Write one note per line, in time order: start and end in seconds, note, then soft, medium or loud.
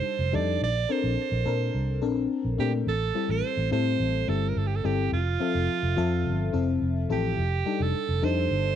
0.00 0.32 G3 medium
0.00 0.33 D4 medium
0.00 0.33 D#4 medium
0.00 0.34 A4 loud
0.00 0.36 C5 medium
0.19 0.35 F1 medium
0.32 0.57 F2 medium
0.32 0.61 G3 medium
0.32 0.61 D4 medium
0.32 0.61 D#4 medium
0.32 0.62 A4 medium
0.32 0.62 D5 loud
0.61 0.85 A#1 medium
0.61 0.93 D5 loud
0.89 1.28 C4 medium
0.89 1.28 D4 medium
0.89 1.27 A4 medium
0.89 1.28 A#4 medium
0.89 2.03 C5 loud
1.04 1.15 A#1 loud
1.32 1.44 A#1 loud
1.46 1.70 A#2 medium
1.46 1.84 C4 medium
1.46 1.84 D4 medium
1.46 1.84 A4 medium
1.46 1.84 A#4 medium
1.74 2.02 C2 medium
2.02 2.26 A#1 medium
2.02 2.40 C4 medium
2.02 2.40 D4 medium
2.02 2.40 A4 medium
2.02 2.41 A#4 medium
2.45 2.56 A#1 medium
2.58 2.82 A#2 medium
2.58 2.87 A3 medium
2.58 2.87 C4 medium
2.58 2.87 D4 medium
2.58 2.72 G4 medium
2.58 2.87 A#4 medium
2.87 3.10 A1 medium
2.87 3.32 A4 loud
3.14 3.53 G3 medium
3.14 3.53 C4 medium
3.14 3.53 E4 medium
3.14 3.53 A4 medium
3.29 3.41 A1 loud
3.29 3.72 C5 loud
3.57 3.69 A1 medium
3.71 3.95 A2 medium
3.71 4.09 G3 medium
3.71 4.09 C4 medium
3.71 4.10 E4 medium
3.71 4.10 A4 loud
3.71 4.30 C5 loud
4.00 4.23 A1 medium
4.28 4.52 G1 medium
4.28 4.66 G3 medium
4.28 4.66 C4 medium
4.28 4.66 E4 medium
4.28 4.66 A4 medium
4.28 4.50 A4 medium
4.49 4.59 A#4 medium
4.56 4.80 G1 medium
4.56 4.68 A4 medium
4.67 4.77 G4 medium
4.75 4.86 A4 medium
4.84 5.08 G1 medium
4.84 5.12 G3 medium
4.84 5.13 C4 medium
4.84 5.13 E4 medium
4.84 5.13 G4 medium
4.84 5.13 A4 medium
5.12 5.36 F1 medium
5.12 6.78 F4 loud
5.40 5.78 F3 medium
5.40 5.79 C4 medium
5.40 5.79 A4 medium
5.40 5.79 E5 medium
5.55 5.67 F1 loud
5.83 5.95 F1 medium
5.97 6.27 F2 loud
5.97 6.35 F3 loud
5.97 6.35 C4 medium
5.97 6.36 A4 loud
5.97 6.35 E5 loud
6.25 6.49 G1 medium
6.53 6.77 F1 medium
6.53 6.91 F3 medium
6.53 6.91 C4 medium
6.53 6.92 E4 medium
6.53 6.92 A4 loud
6.82 7.05 F1 medium
7.09 7.33 A1 medium
7.09 7.38 F3 medium
7.09 7.38 C4 medium
7.09 7.38 E4 medium
7.09 7.84 G4 medium
7.09 7.39 A4 medium
7.38 7.62 F1 medium
7.66 8.04 G3 medium
7.66 8.04 D4 medium
7.66 8.04 D#4 medium
7.66 8.05 A4 medium
7.80 7.92 F1 medium
7.80 8.26 A4 medium
8.08 8.20 F1 medium
8.22 8.46 F2 medium
8.22 8.61 G3 medium
8.22 8.61 D4 medium
8.22 8.61 D#4 medium
8.22 8.61 A4 loud
8.22 8.75 C5 medium
8.51 8.75 G1 medium